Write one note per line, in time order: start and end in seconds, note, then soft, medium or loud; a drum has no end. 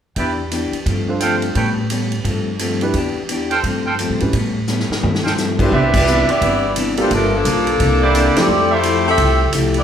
0.16 0.69 E2 medium
0.16 0.40 E3 soft
0.16 0.40 B3 soft
0.16 0.41 D4 soft
0.16 0.31 B4 medium
0.16 0.31 D5 medium
0.16 0.31 E5 medium
0.16 0.31 G5 medium
0.16 kick soft
0.16 ride soft
0.20 0.42 G4 medium
0.51 0.75 E3 soft
0.51 0.75 B3 medium
0.51 0.75 D4 medium
0.51 0.76 G4 medium
0.51 hi-hat pedal soft
0.51 ride medium
0.72 muted upright bass stroke soft
0.72 ride soft
0.86 1.52 G2 medium
0.86 1.10 G2 soft
0.86 1.10 F3 soft
0.86 1.11 A3 soft
0.86 1.11 C4 soft
0.86 kick soft
0.86 ride soft
1.08 1.53 D4 medium
1.08 1.54 F4 medium
1.08 1.54 A4 medium
1.08 1.54 C5 medium
1.20 1.45 G2 medium
1.20 1.45 F3 medium
1.20 1.45 A3 medium
1.20 1.46 C4 medium
1.20 1.36 A4 medium
1.20 1.36 C5 medium
1.20 1.36 F5 medium
1.20 1.36 G5 medium
1.20 hi-hat pedal medium
1.20 ride medium
1.42 ride soft
1.55 2.22 A2 medium
1.55 1.79 A2 soft
1.55 1.79 G3 soft
1.55 1.80 B3 soft
1.55 1.80 C#4 medium
1.55 1.70 A4 medium
1.55 1.70 B4 medium
1.55 1.70 C#5 medium
1.55 1.70 G5 medium
1.55 kick soft
1.55 ride medium
1.90 2.13 A2 medium
1.90 2.14 G3 medium
1.90 2.14 B3 medium
1.90 2.15 C#4 medium
1.90 hi-hat pedal soft
1.90 ride medium
2.12 ride soft
2.24 2.91 G2 medium
2.24 2.48 G2 soft
2.24 2.49 F3 soft
2.24 2.49 A3 soft
2.24 2.50 C4 soft
2.24 kick soft
2.24 ride medium
2.59 2.83 G2 medium
2.59 2.83 F3 medium
2.59 2.84 A3 medium
2.59 2.84 C4 medium
2.59 hi-hat pedal medium
2.59 ride medium
2.81 2.94 D4 medium
2.81 2.94 E4 medium
2.81 2.94 G4 medium
2.81 2.94 B4 medium
2.81 ride soft
2.94 3.60 E2 medium
2.94 3.17 E3 soft
2.94 3.18 B3 soft
2.94 3.19 D4 soft
2.94 3.19 G4 medium
2.94 kick soft
2.94 ride soft
3.29 3.52 E3 medium
3.29 3.53 B3 medium
3.29 3.53 D4 medium
3.29 3.54 G4 medium
3.29 hi-hat pedal soft
3.29 ride medium
3.50 3.60 A4 medium
3.50 3.59 C5 medium
3.50 3.59 F5 medium
3.50 3.60 G5 medium
3.50 ride soft
3.63 4.07 G2 medium
3.63 3.87 G2 soft
3.63 3.88 F3 soft
3.63 3.88 A3 soft
3.63 3.88 C4 soft
3.63 kick soft
3.63 ride soft
3.86 3.95 A4 medium
3.86 3.95 C5 medium
3.86 3.95 F5 medium
3.86 3.95 G5 medium
3.99 4.22 G2 medium
3.99 4.22 F3 medium
3.99 4.23 A3 medium
3.99 4.23 C4 medium
3.99 hi-hat pedal soft
3.99 ride medium
4.10 4.21 A2 soft
4.20 4.32 G#2 medium
4.20 4.32 C#4 soft
4.20 4.32 E4 soft
4.20 4.33 G4 soft
4.20 4.33 B4 soft
4.20 ride soft
4.33 4.86 A2 medium
4.33 4.57 A2 soft
4.33 4.57 G3 soft
4.33 4.58 B3 soft
4.33 kick soft
4.33 ride medium
4.37 4.58 C#4 soft
4.67 4.91 A2 soft
4.67 4.92 G3 soft
4.67 4.92 B3 medium
4.67 4.92 C#4 medium
4.67 snare soft
4.67 hi-hat pedal medium
4.80 snare soft
4.89 muted upright bass stroke soft
4.89 snare medium
5.03 5.26 G2 soft
5.03 5.69 G2 medium
5.03 5.26 F3 soft
5.03 5.27 A3 soft
5.03 5.28 C4 soft
5.03 high tom medium
5.15 snare medium
5.24 5.33 A4 medium
5.24 5.33 C5 medium
5.24 5.33 F5 medium
5.24 5.33 G5 medium
5.24 snare medium
5.38 5.60 G2 medium
5.38 5.61 F3 medium
5.38 5.61 A3 medium
5.38 5.62 C4 medium
5.38 snare soft
5.38 hi-hat pedal medium
5.59 5.71 C3 medium
5.59 5.92 G3 medium
5.59 5.71 D4 soft
5.59 5.92 D4 medium
5.59 5.71 E4 soft
5.59 5.92 E4 medium
5.59 5.71 G4 soft
5.59 5.71 B4 medium
5.59 5.92 C5 medium
5.59 kick medium
5.59 crash medium
5.71 6.24 C2 medium
5.71 5.95 C3 soft
5.71 5.96 E3 soft
5.71 5.96 B3 medium
5.71 5.96 D4 soft
5.71 6.68 G4 medium
5.71 6.68 B4 medium
5.71 6.68 D5 medium
5.71 6.68 E5 medium
5.71 kick soft
5.94 6.30 G3 medium
5.94 6.30 D4 medium
5.94 6.30 E4 medium
5.94 6.30 B4 medium
5.94 kick medium
5.94 crash medium
6.07 6.30 C3 medium
6.07 6.30 E3 soft
6.07 6.31 B3 medium
6.07 6.31 D4 medium
6.07 hi-hat pedal medium
6.29 6.78 B3 medium
6.29 6.78 E4 medium
6.29 6.78 G4 medium
6.29 6.77 D5 medium
6.29 muted upright bass stroke soft
6.29 ride soft
6.41 7.07 G1 medium
6.41 6.64 C3 soft
6.41 6.65 E3 soft
6.41 6.66 B3 soft
6.41 6.66 D4 soft
6.41 kick soft
6.41 ride medium
6.76 6.99 C3 medium
6.76 6.99 E3 medium
6.76 7.00 B3 medium
6.76 7.00 D4 medium
6.76 hi-hat pedal soft
6.76 ride medium
6.97 7.12 G3 medium
6.97 7.09 A#3 medium
6.97 7.09 D4 medium
6.97 7.09 F4 medium
6.97 7.09 G4 medium
6.97 7.10 A4 medium
6.97 ride soft
7.01 7.12 D4 medium
7.01 7.12 E4 medium
7.01 7.12 C5 medium
7.10 7.43 G1 medium
7.10 7.33 F3 medium
7.10 7.34 G3 soft
7.10 7.33 A3 medium
7.10 7.34 A#3 soft
7.10 7.32 D4 medium
7.10 7.35 F4 medium
7.10 7.36 A4 medium
7.10 7.33 A#4 medium
7.10 kick soft
7.10 ride medium
7.35 7.82 F3 medium
7.35 8.38 A#3 medium
7.35 8.38 D4 medium
7.35 8.38 A4 medium
7.45 7.77 B1 medium
7.45 7.68 G3 medium
7.45 7.69 A#3 soft
7.45 7.69 F4 medium
7.45 7.69 A4 medium
7.45 hi-hat pedal medium
7.45 ride medium
7.67 ride soft
7.80 8.32 C2 medium
7.80 8.03 C3 medium
7.80 8.04 E3 medium
7.80 8.04 A#3 soft
7.80 kick soft
7.80 ride medium
7.84 8.05 D4 medium
8.01 8.47 E4 medium
8.01 8.47 G4 medium
8.01 8.47 C5 medium
8.01 8.47 D5 medium
8.14 8.37 C3 medium
8.14 8.38 E3 medium
8.14 8.38 A#3 medium
8.14 8.39 D4 medium
8.14 hi-hat pedal medium
8.14 ride medium
8.35 8.48 F3 medium
8.35 8.48 A3 medium
8.35 8.48 C4 medium
8.35 8.72 C4 medium
8.35 8.48 E4 medium
8.35 8.49 G4 medium
8.35 muted upright bass stroke soft
8.35 snare medium
8.35 ride medium
8.40 8.72 G4 medium
8.40 8.73 A4 medium
8.40 8.73 D5 medium
8.48 9.14 F2 medium
8.48 8.72 F3 soft
8.48 8.73 A3 soft
8.48 8.73 E4 medium
8.52 8.74 G4 soft
8.71 9.07 A3 medium
8.71 9.07 E4 medium
8.71 8.79 F4 medium
8.71 8.79 G4 medium
8.71 9.07 G4 medium
8.71 8.80 A4 medium
8.71 9.07 C5 medium
8.71 8.80 E5 medium
8.83 9.07 F3 medium
8.83 9.07 A3 medium
8.83 9.08 E4 medium
8.83 9.08 G4 medium
8.83 hi-hat pedal medium
8.83 ride medium
9.08 9.51 C4 loud
9.08 9.51 G4 medium
9.08 9.51 A4 medium
9.08 9.52 E5 loud
9.18 9.50 C2 medium
9.18 9.41 F3 soft
9.18 9.42 A3 soft
9.18 9.42 E4 soft
9.18 9.43 G4 soft
9.18 kick soft
9.18 ride medium
9.52 9.84 C2 medium
9.52 9.76 F3 medium
9.52 9.77 A3 medium
9.52 9.77 E4 medium
9.52 9.77 G4 medium
9.52 hi-hat pedal medium
9.52 ride medium
9.74 9.84 B3 medium
9.74 9.84 E4 medium
9.74 9.84 G4 medium
9.74 9.84 D5 medium
9.74 ride soft